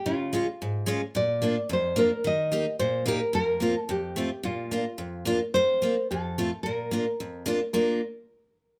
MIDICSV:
0, 0, Header, 1, 3, 480
1, 0, Start_track
1, 0, Key_signature, -2, "major"
1, 0, Tempo, 548948
1, 47, Time_signature, 2, 2, 24, 8
1, 7686, End_track
2, 0, Start_track
2, 0, Title_t, "Nylon-string guitar"
2, 0, Program_c, 0, 24
2, 52, Note_on_c, 0, 65, 83
2, 739, Note_off_c, 0, 65, 0
2, 1018, Note_on_c, 0, 74, 107
2, 1460, Note_off_c, 0, 74, 0
2, 1513, Note_on_c, 0, 72, 87
2, 1731, Note_on_c, 0, 70, 96
2, 1749, Note_off_c, 0, 72, 0
2, 1975, Note_off_c, 0, 70, 0
2, 1985, Note_on_c, 0, 75, 103
2, 2421, Note_off_c, 0, 75, 0
2, 2443, Note_on_c, 0, 72, 95
2, 2685, Note_off_c, 0, 72, 0
2, 2689, Note_on_c, 0, 70, 97
2, 2907, Note_off_c, 0, 70, 0
2, 2927, Note_on_c, 0, 70, 107
2, 3286, Note_off_c, 0, 70, 0
2, 3286, Note_on_c, 0, 69, 107
2, 3414, Note_on_c, 0, 67, 77
2, 3416, Note_off_c, 0, 69, 0
2, 3887, Note_off_c, 0, 67, 0
2, 3891, Note_on_c, 0, 65, 84
2, 4574, Note_off_c, 0, 65, 0
2, 4845, Note_on_c, 0, 72, 113
2, 5336, Note_off_c, 0, 72, 0
2, 5339, Note_on_c, 0, 69, 74
2, 5794, Note_off_c, 0, 69, 0
2, 5798, Note_on_c, 0, 70, 88
2, 6488, Note_off_c, 0, 70, 0
2, 6761, Note_on_c, 0, 70, 72
2, 6989, Note_off_c, 0, 70, 0
2, 7686, End_track
3, 0, Start_track
3, 0, Title_t, "Steel-string acoustic guitar"
3, 0, Program_c, 1, 25
3, 50, Note_on_c, 1, 49, 80
3, 286, Note_on_c, 1, 56, 75
3, 293, Note_on_c, 1, 61, 65
3, 301, Note_on_c, 1, 65, 67
3, 395, Note_off_c, 1, 56, 0
3, 398, Note_off_c, 1, 61, 0
3, 402, Note_off_c, 1, 65, 0
3, 406, Note_off_c, 1, 49, 0
3, 539, Note_on_c, 1, 44, 69
3, 755, Note_on_c, 1, 56, 79
3, 760, Note_on_c, 1, 61, 73
3, 770, Note_on_c, 1, 65, 90
3, 871, Note_off_c, 1, 56, 0
3, 874, Note_off_c, 1, 61, 0
3, 879, Note_off_c, 1, 65, 0
3, 895, Note_off_c, 1, 44, 0
3, 1004, Note_on_c, 1, 46, 72
3, 1239, Note_on_c, 1, 58, 67
3, 1246, Note_on_c, 1, 62, 65
3, 1254, Note_on_c, 1, 65, 68
3, 1352, Note_off_c, 1, 58, 0
3, 1356, Note_off_c, 1, 62, 0
3, 1360, Note_off_c, 1, 65, 0
3, 1364, Note_off_c, 1, 46, 0
3, 1481, Note_on_c, 1, 41, 79
3, 1714, Note_on_c, 1, 58, 75
3, 1721, Note_on_c, 1, 62, 68
3, 1729, Note_on_c, 1, 65, 61
3, 1829, Note_off_c, 1, 58, 0
3, 1833, Note_off_c, 1, 62, 0
3, 1834, Note_off_c, 1, 65, 0
3, 1841, Note_off_c, 1, 41, 0
3, 1961, Note_on_c, 1, 51, 75
3, 2200, Note_on_c, 1, 58, 72
3, 2206, Note_on_c, 1, 63, 62
3, 2211, Note_on_c, 1, 67, 82
3, 2311, Note_off_c, 1, 58, 0
3, 2313, Note_off_c, 1, 63, 0
3, 2316, Note_off_c, 1, 67, 0
3, 2320, Note_off_c, 1, 51, 0
3, 2444, Note_on_c, 1, 46, 83
3, 2672, Note_on_c, 1, 58, 76
3, 2678, Note_on_c, 1, 63, 64
3, 2695, Note_on_c, 1, 67, 88
3, 2785, Note_off_c, 1, 58, 0
3, 2788, Note_off_c, 1, 63, 0
3, 2796, Note_off_c, 1, 67, 0
3, 2800, Note_off_c, 1, 46, 0
3, 2913, Note_on_c, 1, 41, 70
3, 3149, Note_on_c, 1, 58, 65
3, 3161, Note_on_c, 1, 60, 57
3, 3168, Note_on_c, 1, 65, 79
3, 3262, Note_off_c, 1, 58, 0
3, 3268, Note_off_c, 1, 60, 0
3, 3272, Note_off_c, 1, 65, 0
3, 3273, Note_off_c, 1, 41, 0
3, 3400, Note_on_c, 1, 41, 80
3, 3638, Note_on_c, 1, 57, 70
3, 3649, Note_on_c, 1, 60, 65
3, 3654, Note_on_c, 1, 65, 76
3, 3746, Note_off_c, 1, 57, 0
3, 3751, Note_off_c, 1, 60, 0
3, 3754, Note_off_c, 1, 65, 0
3, 3756, Note_off_c, 1, 41, 0
3, 3877, Note_on_c, 1, 46, 74
3, 4121, Note_on_c, 1, 58, 64
3, 4125, Note_on_c, 1, 62, 60
3, 4134, Note_on_c, 1, 65, 79
3, 4227, Note_off_c, 1, 62, 0
3, 4228, Note_off_c, 1, 58, 0
3, 4234, Note_off_c, 1, 65, 0
3, 4235, Note_off_c, 1, 46, 0
3, 4355, Note_on_c, 1, 41, 75
3, 4594, Note_on_c, 1, 58, 70
3, 4601, Note_on_c, 1, 62, 73
3, 4608, Note_on_c, 1, 65, 93
3, 4707, Note_off_c, 1, 58, 0
3, 4709, Note_off_c, 1, 62, 0
3, 4714, Note_off_c, 1, 65, 0
3, 4718, Note_off_c, 1, 41, 0
3, 4857, Note_on_c, 1, 41, 77
3, 5087, Note_on_c, 1, 58, 67
3, 5098, Note_on_c, 1, 60, 59
3, 5102, Note_on_c, 1, 65, 72
3, 5195, Note_off_c, 1, 58, 0
3, 5200, Note_off_c, 1, 60, 0
3, 5202, Note_off_c, 1, 65, 0
3, 5211, Note_off_c, 1, 41, 0
3, 5347, Note_on_c, 1, 41, 71
3, 5579, Note_on_c, 1, 57, 69
3, 5585, Note_on_c, 1, 60, 51
3, 5586, Note_on_c, 1, 65, 87
3, 5681, Note_off_c, 1, 57, 0
3, 5682, Note_off_c, 1, 60, 0
3, 5683, Note_off_c, 1, 65, 0
3, 5694, Note_off_c, 1, 41, 0
3, 5822, Note_on_c, 1, 46, 69
3, 6045, Note_on_c, 1, 58, 74
3, 6055, Note_on_c, 1, 62, 52
3, 6061, Note_on_c, 1, 65, 70
3, 6152, Note_off_c, 1, 58, 0
3, 6157, Note_off_c, 1, 62, 0
3, 6160, Note_off_c, 1, 65, 0
3, 6171, Note_off_c, 1, 46, 0
3, 6297, Note_on_c, 1, 41, 74
3, 6520, Note_on_c, 1, 58, 87
3, 6527, Note_on_c, 1, 62, 81
3, 6539, Note_on_c, 1, 65, 82
3, 6631, Note_off_c, 1, 58, 0
3, 6634, Note_off_c, 1, 62, 0
3, 6640, Note_off_c, 1, 65, 0
3, 6650, Note_off_c, 1, 41, 0
3, 6765, Note_on_c, 1, 65, 80
3, 6769, Note_on_c, 1, 58, 75
3, 6773, Note_on_c, 1, 62, 70
3, 6991, Note_off_c, 1, 65, 0
3, 6994, Note_off_c, 1, 58, 0
3, 6994, Note_off_c, 1, 62, 0
3, 7686, End_track
0, 0, End_of_file